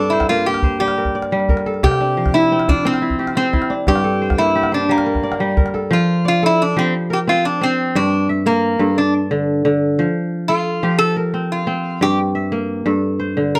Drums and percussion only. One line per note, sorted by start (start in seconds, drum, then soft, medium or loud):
0.20 calabash thump soft
0.20 calabash click medium
0.38 calabash click soft
0.54 calabash click medium
0.62 calabash thump medium
0.79 calabash click soft
0.88 calabash click soft
1.05 calabash thump soft
1.05 calabash click soft
1.22 calabash click soft
1.31 calabash click soft
1.40 calabash click soft
1.49 calabash thump medium
1.49 calabash click soft
1.57 calabash click soft
1.74 calabash click soft
1.83 calabash thump medium
1.91 calabash click soft
2.26 calabash thump soft
2.26 calabash click soft
2.43 calabash click soft
2.60 calabash click soft
2.68 calabash thump medium
2.85 calabash click soft
2.94 calabash click soft
3.10 calabash thump soft
3.10 calabash click soft
3.27 calabash click soft
3.36 calabash click soft
3.44 calabash click soft
3.53 calabash thump medium
3.53 calabash click soft
3.62 calabash click soft
3.87 calabash thump medium
3.87 calabash click soft
3.96 calabash click soft
4.13 calabash click soft
4.30 calabash thump soft
4.30 calabash click soft
4.63 calabash click soft
4.81 calabash click soft
4.98 calabash click medium
5.15 calabash thump soft
5.15 calabash click soft
5.23 calabash click soft
5.32 calabash click soft
5.57 calabash thump medium
5.57 calabash click soft
5.66 calabash click soft
5.74 calabash click soft